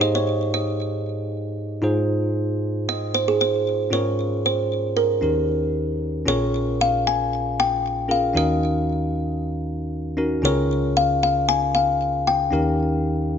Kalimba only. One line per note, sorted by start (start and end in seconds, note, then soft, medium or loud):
0.01 0.13 C5 medium
0.15 0.55 C#5 medium
0.54 1.02 D#5 medium
2.89 3.15 D#5 loud
3.14 3.27 C5 medium
3.28 3.34 G#4 medium
3.41 3.94 C5 medium
3.93 4.46 C#5 medium
4.46 4.99 C5 medium
4.97 5.71 A#4 medium
6.28 6.81 C#5 loud
6.81 7.07 F5 medium
7.07 7.60 G#5 loud
7.60 8.12 G5 medium
8.11 8.23 F5 medium
8.37 10.15 D#5 medium
10.45 10.98 C#5 loud
10.97 11.22 F5 medium
11.23 11.50 F5 medium
11.49 11.75 G#5 loud
11.75 12.28 F5 medium
12.27 13.38 G5 medium